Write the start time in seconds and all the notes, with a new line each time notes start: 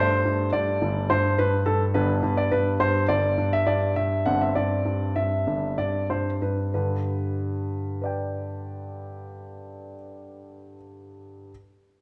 Already playing: G2 A3 D4 C5
0.25 G2
0.53 G2 D5
0.82 G1 G2
1.10 G2 C5
1.38 G2 B4
1.66 G2 A4
1.94 G1 G2 B3 D4 B4
2.23 G2
2.37 D5
2.51 G2 B4
2.80 G2 C5
3.08 G1 G2 D5
3.38 G2
3.53 E5
3.67 G2 D5
3.96 G2 E5
4.26 G1 G2 C4 D4 F#5
4.41 E5
4.55 G2 D5
4.85 G2
5.16 G2 E5
5.47 G1 G2
5.78 G2 D5
6.10 G2 C5
6.42 G2 B4
6.74 G2 D3 B4
8.01 B4 D5 G5